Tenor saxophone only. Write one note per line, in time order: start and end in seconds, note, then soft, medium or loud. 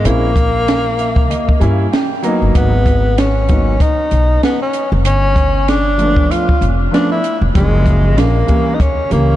0.06 1.93 A#3 loud
2.56 3.20 B3 medium
3.19 3.83 C#4 medium
3.81 4.43 D#4 medium
4.44 4.60 B3 medium
4.62 4.90 C#4 medium
5.06 5.70 C#4 loud
5.69 6.32 D4 loud
6.31 6.67 F4 medium
6.93 7.10 D4 medium
7.11 7.40 E4 medium
7.56 8.20 G#3 loud
8.18 8.76 A#3 medium
8.75 8.82 D#4 medium
8.81 9.12 C#4 medium
9.12 9.36 A#3 medium